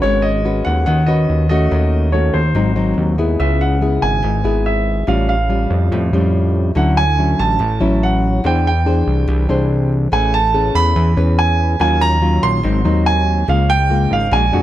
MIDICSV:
0, 0, Header, 1, 4, 480
1, 0, Start_track
1, 0, Tempo, 420168
1, 41, Time_signature, 4, 2, 24, 8
1, 16706, End_track
2, 0, Start_track
2, 0, Title_t, "Grand piano"
2, 0, Program_c, 0, 0
2, 21, Note_on_c, 0, 73, 81
2, 254, Note_on_c, 0, 75, 80
2, 279, Note_off_c, 0, 73, 0
2, 713, Note_off_c, 0, 75, 0
2, 738, Note_on_c, 0, 78, 81
2, 966, Note_off_c, 0, 78, 0
2, 984, Note_on_c, 0, 78, 82
2, 1216, Note_on_c, 0, 75, 80
2, 1240, Note_off_c, 0, 78, 0
2, 1674, Note_off_c, 0, 75, 0
2, 1707, Note_on_c, 0, 75, 78
2, 2426, Note_on_c, 0, 73, 67
2, 2456, Note_off_c, 0, 75, 0
2, 2669, Note_on_c, 0, 72, 68
2, 2681, Note_off_c, 0, 73, 0
2, 3349, Note_off_c, 0, 72, 0
2, 3880, Note_on_c, 0, 76, 72
2, 4125, Note_on_c, 0, 78, 75
2, 4127, Note_off_c, 0, 76, 0
2, 4595, Note_on_c, 0, 80, 77
2, 4617, Note_off_c, 0, 78, 0
2, 5324, Note_on_c, 0, 76, 69
2, 5339, Note_off_c, 0, 80, 0
2, 5768, Note_off_c, 0, 76, 0
2, 5807, Note_on_c, 0, 77, 75
2, 6027, Note_off_c, 0, 77, 0
2, 6044, Note_on_c, 0, 77, 77
2, 7436, Note_off_c, 0, 77, 0
2, 7734, Note_on_c, 0, 78, 79
2, 7965, Note_on_c, 0, 80, 94
2, 7974, Note_off_c, 0, 78, 0
2, 8447, Note_on_c, 0, 81, 88
2, 8457, Note_off_c, 0, 80, 0
2, 9177, Note_on_c, 0, 78, 81
2, 9185, Note_off_c, 0, 81, 0
2, 9663, Note_off_c, 0, 78, 0
2, 9669, Note_on_c, 0, 79, 83
2, 9891, Note_off_c, 0, 79, 0
2, 9909, Note_on_c, 0, 79, 84
2, 11289, Note_off_c, 0, 79, 0
2, 11571, Note_on_c, 0, 80, 80
2, 11811, Note_on_c, 0, 81, 98
2, 11813, Note_off_c, 0, 80, 0
2, 12285, Note_on_c, 0, 83, 101
2, 12301, Note_off_c, 0, 81, 0
2, 13007, Note_on_c, 0, 80, 84
2, 13025, Note_off_c, 0, 83, 0
2, 13474, Note_off_c, 0, 80, 0
2, 13492, Note_on_c, 0, 80, 86
2, 13725, Note_on_c, 0, 82, 110
2, 13734, Note_off_c, 0, 80, 0
2, 14200, Note_on_c, 0, 84, 96
2, 14218, Note_off_c, 0, 82, 0
2, 14923, Note_on_c, 0, 80, 90
2, 14943, Note_off_c, 0, 84, 0
2, 15369, Note_off_c, 0, 80, 0
2, 15415, Note_on_c, 0, 77, 81
2, 15632, Note_off_c, 0, 77, 0
2, 15647, Note_on_c, 0, 79, 105
2, 16139, Note_off_c, 0, 79, 0
2, 16140, Note_on_c, 0, 77, 81
2, 16370, Note_on_c, 0, 80, 85
2, 16378, Note_off_c, 0, 77, 0
2, 16706, Note_off_c, 0, 80, 0
2, 16706, End_track
3, 0, Start_track
3, 0, Title_t, "Nylon-string guitar"
3, 0, Program_c, 1, 24
3, 0, Note_on_c, 1, 61, 65
3, 0, Note_on_c, 1, 66, 57
3, 0, Note_on_c, 1, 71, 67
3, 36, Note_on_c, 1, 56, 54
3, 481, Note_off_c, 1, 61, 0
3, 483, Note_off_c, 1, 66, 0
3, 484, Note_off_c, 1, 71, 0
3, 515, Note_on_c, 1, 61, 49
3, 517, Note_on_c, 1, 66, 52
3, 521, Note_on_c, 1, 71, 59
3, 975, Note_off_c, 1, 56, 0
3, 991, Note_on_c, 1, 51, 58
3, 1200, Note_off_c, 1, 61, 0
3, 1200, Note_off_c, 1, 66, 0
3, 1203, Note_off_c, 1, 71, 0
3, 1228, Note_on_c, 1, 61, 54
3, 1234, Note_on_c, 1, 66, 52
3, 1237, Note_on_c, 1, 71, 61
3, 1676, Note_off_c, 1, 61, 0
3, 1678, Note_off_c, 1, 66, 0
3, 1681, Note_off_c, 1, 71, 0
3, 1714, Note_on_c, 1, 57, 64
3, 1718, Note_on_c, 1, 61, 63
3, 1726, Note_on_c, 1, 66, 67
3, 1932, Note_off_c, 1, 51, 0
3, 1958, Note_on_c, 1, 51, 49
3, 2399, Note_off_c, 1, 57, 0
3, 2401, Note_off_c, 1, 61, 0
3, 2403, Note_off_c, 1, 66, 0
3, 2435, Note_on_c, 1, 57, 47
3, 2441, Note_on_c, 1, 61, 47
3, 2447, Note_on_c, 1, 66, 55
3, 2760, Note_off_c, 1, 57, 0
3, 2764, Note_off_c, 1, 61, 0
3, 2767, Note_off_c, 1, 66, 0
3, 2895, Note_off_c, 1, 51, 0
3, 2910, Note_on_c, 1, 44, 53
3, 2911, Note_on_c, 1, 54, 50
3, 2918, Note_on_c, 1, 60, 56
3, 2922, Note_on_c, 1, 63, 63
3, 3117, Note_off_c, 1, 54, 0
3, 3122, Note_off_c, 1, 60, 0
3, 3122, Note_off_c, 1, 63, 0
3, 3148, Note_on_c, 1, 54, 61
3, 3151, Note_on_c, 1, 60, 53
3, 3154, Note_on_c, 1, 63, 60
3, 3597, Note_off_c, 1, 54, 0
3, 3597, Note_off_c, 1, 60, 0
3, 3599, Note_off_c, 1, 63, 0
3, 3635, Note_on_c, 1, 59, 63
3, 3642, Note_on_c, 1, 64, 62
3, 3644, Note_on_c, 1, 68, 62
3, 3851, Note_off_c, 1, 44, 0
3, 3883, Note_on_c, 1, 49, 51
3, 4319, Note_off_c, 1, 59, 0
3, 4323, Note_off_c, 1, 64, 0
3, 4323, Note_off_c, 1, 68, 0
3, 4356, Note_on_c, 1, 59, 50
3, 4362, Note_on_c, 1, 64, 48
3, 4368, Note_on_c, 1, 68, 59
3, 4817, Note_off_c, 1, 49, 0
3, 4829, Note_on_c, 1, 44, 56
3, 5040, Note_off_c, 1, 59, 0
3, 5041, Note_off_c, 1, 64, 0
3, 5046, Note_off_c, 1, 68, 0
3, 5073, Note_on_c, 1, 59, 60
3, 5079, Note_on_c, 1, 64, 58
3, 5084, Note_on_c, 1, 68, 64
3, 5758, Note_off_c, 1, 59, 0
3, 5760, Note_off_c, 1, 64, 0
3, 5764, Note_off_c, 1, 68, 0
3, 5770, Note_off_c, 1, 44, 0
3, 5793, Note_on_c, 1, 45, 50
3, 5797, Note_on_c, 1, 55, 47
3, 5799, Note_on_c, 1, 61, 48
3, 5804, Note_on_c, 1, 65, 54
3, 6106, Note_off_c, 1, 55, 0
3, 6109, Note_off_c, 1, 61, 0
3, 6111, Note_off_c, 1, 65, 0
3, 6273, Note_on_c, 1, 55, 46
3, 6279, Note_on_c, 1, 61, 50
3, 6281, Note_on_c, 1, 65, 55
3, 6733, Note_off_c, 1, 45, 0
3, 6765, Note_on_c, 1, 45, 58
3, 6958, Note_off_c, 1, 55, 0
3, 6960, Note_off_c, 1, 61, 0
3, 6962, Note_off_c, 1, 65, 0
3, 7004, Note_on_c, 1, 55, 56
3, 7009, Note_on_c, 1, 61, 57
3, 7014, Note_on_c, 1, 65, 62
3, 7683, Note_off_c, 1, 55, 0
3, 7686, Note_off_c, 1, 61, 0
3, 7689, Note_off_c, 1, 65, 0
3, 7698, Note_off_c, 1, 45, 0
3, 7713, Note_on_c, 1, 50, 52
3, 7717, Note_on_c, 1, 54, 54
3, 7718, Note_on_c, 1, 61, 50
3, 7726, Note_on_c, 1, 64, 61
3, 8026, Note_off_c, 1, 54, 0
3, 8029, Note_off_c, 1, 61, 0
3, 8030, Note_off_c, 1, 64, 0
3, 8207, Note_on_c, 1, 54, 48
3, 8212, Note_on_c, 1, 61, 53
3, 8214, Note_on_c, 1, 64, 57
3, 8653, Note_off_c, 1, 50, 0
3, 8671, Note_on_c, 1, 45, 54
3, 8681, Note_off_c, 1, 54, 0
3, 8683, Note_off_c, 1, 61, 0
3, 8684, Note_off_c, 1, 64, 0
3, 8912, Note_on_c, 1, 54, 58
3, 8918, Note_on_c, 1, 61, 60
3, 8921, Note_on_c, 1, 64, 68
3, 9598, Note_off_c, 1, 54, 0
3, 9600, Note_off_c, 1, 61, 0
3, 9602, Note_off_c, 1, 64, 0
3, 9612, Note_off_c, 1, 45, 0
3, 9641, Note_on_c, 1, 52, 51
3, 9645, Note_on_c, 1, 62, 49
3, 9647, Note_on_c, 1, 68, 51
3, 9654, Note_on_c, 1, 72, 54
3, 9951, Note_off_c, 1, 62, 0
3, 9953, Note_off_c, 1, 68, 0
3, 9956, Note_off_c, 1, 72, 0
3, 10120, Note_on_c, 1, 62, 50
3, 10125, Note_on_c, 1, 68, 59
3, 10133, Note_on_c, 1, 72, 53
3, 10577, Note_off_c, 1, 52, 0
3, 10597, Note_on_c, 1, 52, 55
3, 10802, Note_off_c, 1, 62, 0
3, 10806, Note_off_c, 1, 68, 0
3, 10807, Note_off_c, 1, 72, 0
3, 10839, Note_on_c, 1, 62, 60
3, 10846, Note_on_c, 1, 68, 58
3, 10853, Note_on_c, 1, 72, 67
3, 11522, Note_off_c, 1, 62, 0
3, 11526, Note_off_c, 1, 68, 0
3, 11526, Note_off_c, 1, 72, 0
3, 11535, Note_off_c, 1, 52, 0
3, 11560, Note_on_c, 1, 57, 52
3, 11563, Note_on_c, 1, 61, 52
3, 11565, Note_on_c, 1, 68, 53
3, 11569, Note_on_c, 1, 71, 57
3, 11869, Note_off_c, 1, 61, 0
3, 11872, Note_off_c, 1, 68, 0
3, 11874, Note_off_c, 1, 71, 0
3, 12040, Note_on_c, 1, 61, 49
3, 12045, Note_on_c, 1, 68, 50
3, 12048, Note_on_c, 1, 71, 58
3, 12497, Note_off_c, 1, 57, 0
3, 12520, Note_on_c, 1, 52, 56
3, 12723, Note_off_c, 1, 61, 0
3, 12723, Note_off_c, 1, 68, 0
3, 12726, Note_off_c, 1, 71, 0
3, 12757, Note_on_c, 1, 61, 62
3, 12762, Note_on_c, 1, 68, 55
3, 12767, Note_on_c, 1, 71, 66
3, 13441, Note_off_c, 1, 61, 0
3, 13443, Note_off_c, 1, 68, 0
3, 13446, Note_off_c, 1, 71, 0
3, 13457, Note_off_c, 1, 52, 0
3, 13475, Note_on_c, 1, 51, 53
3, 13481, Note_on_c, 1, 54, 51
3, 13484, Note_on_c, 1, 61, 48
3, 13490, Note_on_c, 1, 65, 59
3, 13922, Note_off_c, 1, 54, 0
3, 13924, Note_off_c, 1, 61, 0
3, 13927, Note_off_c, 1, 65, 0
3, 13955, Note_on_c, 1, 54, 51
3, 13960, Note_on_c, 1, 61, 50
3, 13963, Note_on_c, 1, 65, 54
3, 14415, Note_off_c, 1, 51, 0
3, 14419, Note_off_c, 1, 54, 0
3, 14422, Note_off_c, 1, 61, 0
3, 14422, Note_off_c, 1, 65, 0
3, 14433, Note_on_c, 1, 44, 56
3, 14436, Note_on_c, 1, 54, 54
3, 14439, Note_on_c, 1, 60, 57
3, 14442, Note_on_c, 1, 63, 59
3, 14640, Note_off_c, 1, 54, 0
3, 14640, Note_off_c, 1, 60, 0
3, 14644, Note_off_c, 1, 63, 0
3, 14674, Note_on_c, 1, 54, 60
3, 14681, Note_on_c, 1, 60, 60
3, 14682, Note_on_c, 1, 63, 66
3, 15360, Note_off_c, 1, 54, 0
3, 15362, Note_off_c, 1, 60, 0
3, 15363, Note_off_c, 1, 63, 0
3, 15374, Note_off_c, 1, 44, 0
3, 15398, Note_on_c, 1, 49, 56
3, 15404, Note_on_c, 1, 56, 57
3, 15404, Note_on_c, 1, 58, 50
3, 15412, Note_on_c, 1, 65, 57
3, 15710, Note_off_c, 1, 56, 0
3, 15712, Note_off_c, 1, 58, 0
3, 15715, Note_off_c, 1, 65, 0
3, 15876, Note_on_c, 1, 56, 54
3, 15883, Note_on_c, 1, 58, 54
3, 15888, Note_on_c, 1, 65, 52
3, 16202, Note_off_c, 1, 56, 0
3, 16204, Note_off_c, 1, 58, 0
3, 16207, Note_off_c, 1, 65, 0
3, 16337, Note_off_c, 1, 49, 0
3, 16353, Note_on_c, 1, 46, 58
3, 16355, Note_on_c, 1, 56, 59
3, 16359, Note_on_c, 1, 62, 61
3, 16363, Note_on_c, 1, 66, 58
3, 16499, Note_off_c, 1, 56, 0
3, 16502, Note_off_c, 1, 62, 0
3, 16502, Note_off_c, 1, 66, 0
3, 16592, Note_on_c, 1, 56, 58
3, 16597, Note_on_c, 1, 62, 59
3, 16603, Note_on_c, 1, 66, 68
3, 16706, Note_off_c, 1, 46, 0
3, 16706, Note_off_c, 1, 56, 0
3, 16706, Note_off_c, 1, 62, 0
3, 16706, Note_off_c, 1, 66, 0
3, 16706, End_track
4, 0, Start_track
4, 0, Title_t, "Analog synth bass"
4, 0, Program_c, 2, 38
4, 36, Note_on_c, 2, 32, 101
4, 713, Note_off_c, 2, 32, 0
4, 758, Note_on_c, 2, 39, 98
4, 983, Note_off_c, 2, 39, 0
4, 1000, Note_on_c, 2, 39, 89
4, 1447, Note_off_c, 2, 39, 0
4, 1477, Note_on_c, 2, 39, 93
4, 1926, Note_off_c, 2, 39, 0
4, 1958, Note_on_c, 2, 39, 104
4, 2634, Note_off_c, 2, 39, 0
4, 2676, Note_on_c, 2, 39, 91
4, 2901, Note_off_c, 2, 39, 0
4, 2915, Note_on_c, 2, 32, 93
4, 3364, Note_off_c, 2, 32, 0
4, 3397, Note_on_c, 2, 39, 95
4, 3845, Note_off_c, 2, 39, 0
4, 3883, Note_on_c, 2, 37, 93
4, 4556, Note_off_c, 2, 37, 0
4, 4600, Note_on_c, 2, 32, 89
4, 4823, Note_off_c, 2, 32, 0
4, 4842, Note_on_c, 2, 32, 97
4, 5064, Note_off_c, 2, 32, 0
4, 5080, Note_on_c, 2, 32, 86
4, 5754, Note_off_c, 2, 32, 0
4, 5799, Note_on_c, 2, 33, 93
4, 6474, Note_off_c, 2, 33, 0
4, 6514, Note_on_c, 2, 41, 98
4, 6740, Note_off_c, 2, 41, 0
4, 6757, Note_on_c, 2, 41, 103
4, 6982, Note_off_c, 2, 41, 0
4, 7001, Note_on_c, 2, 41, 90
4, 7675, Note_off_c, 2, 41, 0
4, 7723, Note_on_c, 2, 38, 98
4, 8396, Note_off_c, 2, 38, 0
4, 8448, Note_on_c, 2, 33, 92
4, 8668, Note_off_c, 2, 33, 0
4, 8682, Note_on_c, 2, 33, 106
4, 8904, Note_off_c, 2, 33, 0
4, 8926, Note_on_c, 2, 33, 87
4, 9597, Note_off_c, 2, 33, 0
4, 9647, Note_on_c, 2, 40, 94
4, 10318, Note_off_c, 2, 40, 0
4, 10362, Note_on_c, 2, 36, 88
4, 10585, Note_off_c, 2, 36, 0
4, 10601, Note_on_c, 2, 36, 107
4, 10824, Note_off_c, 2, 36, 0
4, 10841, Note_on_c, 2, 36, 94
4, 11515, Note_off_c, 2, 36, 0
4, 11562, Note_on_c, 2, 33, 92
4, 12236, Note_off_c, 2, 33, 0
4, 12277, Note_on_c, 2, 40, 91
4, 12502, Note_off_c, 2, 40, 0
4, 12518, Note_on_c, 2, 40, 107
4, 12743, Note_off_c, 2, 40, 0
4, 12760, Note_on_c, 2, 40, 88
4, 13435, Note_off_c, 2, 40, 0
4, 13480, Note_on_c, 2, 39, 89
4, 14155, Note_off_c, 2, 39, 0
4, 14202, Note_on_c, 2, 34, 95
4, 14425, Note_off_c, 2, 34, 0
4, 14444, Note_on_c, 2, 32, 107
4, 14666, Note_off_c, 2, 32, 0
4, 14682, Note_on_c, 2, 39, 86
4, 15356, Note_off_c, 2, 39, 0
4, 15401, Note_on_c, 2, 37, 96
4, 16076, Note_off_c, 2, 37, 0
4, 16119, Note_on_c, 2, 32, 92
4, 16343, Note_off_c, 2, 32, 0
4, 16356, Note_on_c, 2, 34, 100
4, 16582, Note_off_c, 2, 34, 0
4, 16600, Note_on_c, 2, 41, 92
4, 16706, Note_off_c, 2, 41, 0
4, 16706, End_track
0, 0, End_of_file